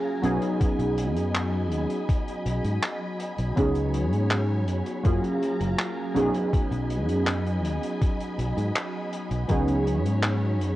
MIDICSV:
0, 0, Header, 1, 6, 480
1, 0, Start_track
1, 0, Tempo, 740741
1, 391, Time_signature, 4, 2, 24, 8
1, 6971, End_track
2, 0, Start_track
2, 0, Title_t, "String machine"
2, 0, Program_c, 0, 50
2, 0, Note_on_c, 0, 54, 81
2, 0, Note_on_c, 0, 77, 72
2, 0, Note_on_c, 0, 80, 72
2, 0, Note_on_c, 0, 82, 87
2, 145, Note_off_c, 0, 82, 0
2, 146, Note_off_c, 0, 77, 0
2, 153, Note_on_c, 0, 83, 88
2, 155, Note_on_c, 0, 75, 72
2, 2286, Note_off_c, 0, 80, 0
2, 2287, Note_off_c, 0, 54, 0
2, 2291, Note_off_c, 0, 75, 0
2, 2317, Note_on_c, 0, 54, 81
2, 2317, Note_on_c, 0, 73, 71
2, 2317, Note_on_c, 0, 80, 72
2, 3246, Note_off_c, 0, 83, 0
2, 3265, Note_off_c, 0, 73, 0
2, 3265, Note_off_c, 0, 80, 0
2, 3276, Note_on_c, 0, 77, 72
2, 3277, Note_on_c, 0, 80, 73
2, 3277, Note_on_c, 0, 82, 89
2, 3987, Note_off_c, 0, 77, 0
2, 3987, Note_off_c, 0, 82, 0
2, 3996, Note_on_c, 0, 83, 90
2, 3997, Note_on_c, 0, 75, 71
2, 6128, Note_off_c, 0, 80, 0
2, 6133, Note_off_c, 0, 75, 0
2, 6150, Note_on_c, 0, 80, 73
2, 6151, Note_on_c, 0, 73, 74
2, 6971, Note_off_c, 0, 54, 0
2, 6971, Note_off_c, 0, 73, 0
2, 6971, Note_off_c, 0, 80, 0
2, 6971, Note_off_c, 0, 83, 0
2, 6971, End_track
3, 0, Start_track
3, 0, Title_t, "Synth keys"
3, 0, Program_c, 1, 88
3, 0, Control_c, 1, 64, 127
3, 0, Note_on_c, 1, 54, 81
3, 0, Note_on_c, 1, 58, 73
3, 0, Note_on_c, 1, 61, 73
3, 0, Note_on_c, 1, 65, 72
3, 0, Note_on_c, 1, 68, 89
3, 99, Note_off_c, 1, 54, 0
3, 102, Note_off_c, 1, 58, 0
3, 104, Note_off_c, 1, 61, 0
3, 107, Note_off_c, 1, 65, 0
3, 109, Note_off_c, 1, 68, 0
3, 142, Note_on_c, 1, 54, 94
3, 147, Note_on_c, 1, 59, 83
3, 151, Note_on_c, 1, 61, 84
3, 157, Note_on_c, 1, 63, 84
3, 161, Control_c, 1, 64, 0
3, 162, Note_on_c, 1, 68, 100
3, 269, Control_c, 1, 64, 127
3, 2259, Note_off_c, 1, 54, 0
3, 2261, Note_off_c, 1, 59, 0
3, 2264, Note_off_c, 1, 61, 0
3, 2266, Note_off_c, 1, 63, 0
3, 2269, Note_off_c, 1, 68, 0
3, 2304, Note_on_c, 1, 54, 82
3, 2309, Note_on_c, 1, 59, 74
3, 2314, Note_on_c, 1, 61, 74
3, 2318, Note_on_c, 1, 63, 76
3, 2320, Control_c, 1, 64, 0
3, 2323, Note_on_c, 1, 68, 89
3, 2441, Control_c, 1, 64, 127
3, 3220, Note_off_c, 1, 54, 0
3, 3223, Note_off_c, 1, 59, 0
3, 3225, Note_off_c, 1, 61, 0
3, 3227, Note_off_c, 1, 63, 0
3, 3230, Note_off_c, 1, 68, 0
3, 3262, Note_on_c, 1, 54, 83
3, 3268, Note_on_c, 1, 58, 72
3, 3272, Note_on_c, 1, 61, 73
3, 3278, Note_on_c, 1, 65, 75
3, 3280, Control_c, 1, 64, 0
3, 3282, Note_on_c, 1, 68, 88
3, 3382, Control_c, 1, 64, 127
3, 3939, Note_off_c, 1, 54, 0
3, 3942, Note_off_c, 1, 58, 0
3, 3944, Note_off_c, 1, 61, 0
3, 3947, Note_off_c, 1, 65, 0
3, 3949, Note_off_c, 1, 68, 0
3, 3981, Note_on_c, 1, 54, 94
3, 3986, Note_on_c, 1, 59, 86
3, 3990, Note_on_c, 1, 61, 85
3, 3995, Note_on_c, 1, 63, 82
3, 3999, Control_c, 1, 64, 0
3, 4000, Note_on_c, 1, 68, 102
3, 4122, Control_c, 1, 64, 127
3, 6099, Note_off_c, 1, 54, 0
3, 6101, Note_off_c, 1, 59, 0
3, 6103, Note_off_c, 1, 61, 0
3, 6106, Note_off_c, 1, 63, 0
3, 6108, Note_off_c, 1, 68, 0
3, 6143, Note_on_c, 1, 54, 83
3, 6148, Note_on_c, 1, 59, 74
3, 6153, Note_on_c, 1, 61, 75
3, 6157, Note_on_c, 1, 63, 77
3, 6161, Control_c, 1, 64, 0
3, 6162, Note_on_c, 1, 68, 88
3, 6277, Control_c, 1, 64, 127
3, 6971, Note_off_c, 1, 54, 0
3, 6971, Note_off_c, 1, 59, 0
3, 6971, Note_off_c, 1, 61, 0
3, 6971, Note_off_c, 1, 63, 0
3, 6971, Note_off_c, 1, 68, 0
3, 6971, End_track
4, 0, Start_track
4, 0, Title_t, "Fretless electric bass"
4, 0, Program_c, 2, 35
4, 152, Note_on_c, 2, 35, 95
4, 239, Note_off_c, 2, 35, 0
4, 511, Note_on_c, 2, 35, 97
4, 752, Note_off_c, 2, 35, 0
4, 752, Note_on_c, 2, 42, 89
4, 1112, Note_off_c, 2, 42, 0
4, 1112, Note_on_c, 2, 39, 89
4, 1199, Note_off_c, 2, 39, 0
4, 1591, Note_on_c, 2, 35, 81
4, 1679, Note_off_c, 2, 35, 0
4, 1711, Note_on_c, 2, 44, 88
4, 1798, Note_off_c, 2, 44, 0
4, 2193, Note_on_c, 2, 35, 85
4, 2279, Note_off_c, 2, 35, 0
4, 2314, Note_on_c, 2, 37, 101
4, 2673, Note_off_c, 2, 37, 0
4, 2673, Note_on_c, 2, 44, 92
4, 3031, Note_off_c, 2, 44, 0
4, 3031, Note_on_c, 2, 42, 85
4, 3119, Note_off_c, 2, 42, 0
4, 3275, Note_on_c, 2, 42, 89
4, 3360, Note_off_c, 2, 42, 0
4, 3633, Note_on_c, 2, 30, 99
4, 3719, Note_off_c, 2, 30, 0
4, 3992, Note_on_c, 2, 35, 94
4, 4079, Note_off_c, 2, 35, 0
4, 4351, Note_on_c, 2, 35, 96
4, 4592, Note_off_c, 2, 35, 0
4, 4592, Note_on_c, 2, 42, 91
4, 4951, Note_off_c, 2, 42, 0
4, 4951, Note_on_c, 2, 39, 90
4, 5039, Note_off_c, 2, 39, 0
4, 5432, Note_on_c, 2, 35, 80
4, 5519, Note_off_c, 2, 35, 0
4, 5552, Note_on_c, 2, 44, 88
4, 5639, Note_off_c, 2, 44, 0
4, 6031, Note_on_c, 2, 35, 87
4, 6118, Note_off_c, 2, 35, 0
4, 6153, Note_on_c, 2, 37, 99
4, 6513, Note_off_c, 2, 37, 0
4, 6513, Note_on_c, 2, 44, 91
4, 6870, Note_off_c, 2, 44, 0
4, 6870, Note_on_c, 2, 42, 89
4, 6958, Note_off_c, 2, 42, 0
4, 6971, End_track
5, 0, Start_track
5, 0, Title_t, "Muted fretless electric bass strokes"
5, 394, Note_on_c, 9, 29, 45
5, 458, Note_off_c, 9, 29, 0
5, 4234, Note_on_c, 9, 29, 44
5, 4298, Note_off_c, 9, 29, 0
5, 6971, End_track
6, 0, Start_track
6, 0, Title_t, "Drums"
6, 151, Note_on_c, 9, 42, 95
6, 216, Note_off_c, 9, 42, 0
6, 269, Note_on_c, 9, 42, 74
6, 334, Note_off_c, 9, 42, 0
6, 392, Note_on_c, 9, 42, 89
6, 394, Note_on_c, 9, 36, 125
6, 457, Note_off_c, 9, 42, 0
6, 459, Note_off_c, 9, 36, 0
6, 514, Note_on_c, 9, 42, 57
6, 579, Note_off_c, 9, 42, 0
6, 632, Note_on_c, 9, 42, 95
6, 697, Note_off_c, 9, 42, 0
6, 752, Note_on_c, 9, 42, 62
6, 817, Note_off_c, 9, 42, 0
6, 872, Note_on_c, 9, 42, 93
6, 874, Note_on_c, 9, 39, 123
6, 937, Note_off_c, 9, 42, 0
6, 939, Note_off_c, 9, 39, 0
6, 1109, Note_on_c, 9, 42, 84
6, 1174, Note_off_c, 9, 42, 0
6, 1229, Note_on_c, 9, 42, 68
6, 1293, Note_off_c, 9, 42, 0
6, 1353, Note_on_c, 9, 42, 88
6, 1354, Note_on_c, 9, 36, 120
6, 1418, Note_off_c, 9, 42, 0
6, 1419, Note_off_c, 9, 36, 0
6, 1475, Note_on_c, 9, 42, 58
6, 1540, Note_off_c, 9, 42, 0
6, 1592, Note_on_c, 9, 42, 88
6, 1657, Note_off_c, 9, 42, 0
6, 1711, Note_on_c, 9, 42, 69
6, 1776, Note_off_c, 9, 42, 0
6, 1828, Note_on_c, 9, 42, 98
6, 1833, Note_on_c, 9, 39, 127
6, 1893, Note_off_c, 9, 42, 0
6, 1898, Note_off_c, 9, 39, 0
6, 2071, Note_on_c, 9, 42, 93
6, 2135, Note_off_c, 9, 42, 0
6, 2190, Note_on_c, 9, 42, 75
6, 2255, Note_off_c, 9, 42, 0
6, 2312, Note_on_c, 9, 42, 91
6, 2314, Note_on_c, 9, 36, 124
6, 2377, Note_off_c, 9, 42, 0
6, 2379, Note_off_c, 9, 36, 0
6, 2428, Note_on_c, 9, 42, 59
6, 2493, Note_off_c, 9, 42, 0
6, 2551, Note_on_c, 9, 42, 92
6, 2616, Note_off_c, 9, 42, 0
6, 2674, Note_on_c, 9, 42, 61
6, 2738, Note_off_c, 9, 42, 0
6, 2792, Note_on_c, 9, 39, 126
6, 2795, Note_on_c, 9, 42, 84
6, 2857, Note_off_c, 9, 39, 0
6, 2860, Note_off_c, 9, 42, 0
6, 3031, Note_on_c, 9, 42, 95
6, 3096, Note_off_c, 9, 42, 0
6, 3150, Note_on_c, 9, 42, 75
6, 3215, Note_off_c, 9, 42, 0
6, 3271, Note_on_c, 9, 42, 92
6, 3274, Note_on_c, 9, 36, 122
6, 3336, Note_off_c, 9, 42, 0
6, 3339, Note_off_c, 9, 36, 0
6, 3396, Note_on_c, 9, 42, 53
6, 3461, Note_off_c, 9, 42, 0
6, 3516, Note_on_c, 9, 42, 86
6, 3581, Note_off_c, 9, 42, 0
6, 3633, Note_on_c, 9, 42, 72
6, 3698, Note_off_c, 9, 42, 0
6, 3753, Note_on_c, 9, 39, 126
6, 3760, Note_on_c, 9, 42, 99
6, 3817, Note_off_c, 9, 39, 0
6, 3824, Note_off_c, 9, 42, 0
6, 3992, Note_on_c, 9, 42, 100
6, 4057, Note_off_c, 9, 42, 0
6, 4111, Note_on_c, 9, 42, 72
6, 4176, Note_off_c, 9, 42, 0
6, 4234, Note_on_c, 9, 36, 125
6, 4236, Note_on_c, 9, 42, 88
6, 4299, Note_off_c, 9, 36, 0
6, 4300, Note_off_c, 9, 42, 0
6, 4354, Note_on_c, 9, 42, 53
6, 4419, Note_off_c, 9, 42, 0
6, 4472, Note_on_c, 9, 42, 82
6, 4536, Note_off_c, 9, 42, 0
6, 4592, Note_on_c, 9, 42, 68
6, 4657, Note_off_c, 9, 42, 0
6, 4711, Note_on_c, 9, 39, 124
6, 4715, Note_on_c, 9, 42, 95
6, 4776, Note_off_c, 9, 39, 0
6, 4780, Note_off_c, 9, 42, 0
6, 4835, Note_on_c, 9, 42, 55
6, 4900, Note_off_c, 9, 42, 0
6, 4953, Note_on_c, 9, 42, 88
6, 5018, Note_off_c, 9, 42, 0
6, 5072, Note_on_c, 9, 42, 67
6, 5137, Note_off_c, 9, 42, 0
6, 5193, Note_on_c, 9, 42, 90
6, 5194, Note_on_c, 9, 36, 117
6, 5258, Note_off_c, 9, 42, 0
6, 5259, Note_off_c, 9, 36, 0
6, 5314, Note_on_c, 9, 42, 53
6, 5379, Note_off_c, 9, 42, 0
6, 5434, Note_on_c, 9, 42, 83
6, 5499, Note_off_c, 9, 42, 0
6, 5556, Note_on_c, 9, 42, 63
6, 5621, Note_off_c, 9, 42, 0
6, 5673, Note_on_c, 9, 42, 86
6, 5675, Note_on_c, 9, 39, 127
6, 5738, Note_off_c, 9, 42, 0
6, 5740, Note_off_c, 9, 39, 0
6, 5913, Note_on_c, 9, 42, 91
6, 5977, Note_off_c, 9, 42, 0
6, 6031, Note_on_c, 9, 42, 72
6, 6096, Note_off_c, 9, 42, 0
6, 6146, Note_on_c, 9, 42, 85
6, 6153, Note_on_c, 9, 36, 118
6, 6211, Note_off_c, 9, 42, 0
6, 6218, Note_off_c, 9, 36, 0
6, 6270, Note_on_c, 9, 42, 50
6, 6335, Note_off_c, 9, 42, 0
6, 6393, Note_on_c, 9, 42, 83
6, 6458, Note_off_c, 9, 42, 0
6, 6515, Note_on_c, 9, 42, 69
6, 6580, Note_off_c, 9, 42, 0
6, 6627, Note_on_c, 9, 42, 87
6, 6629, Note_on_c, 9, 39, 127
6, 6692, Note_off_c, 9, 42, 0
6, 6694, Note_off_c, 9, 39, 0
6, 6874, Note_on_c, 9, 42, 82
6, 6939, Note_off_c, 9, 42, 0
6, 6971, End_track
0, 0, End_of_file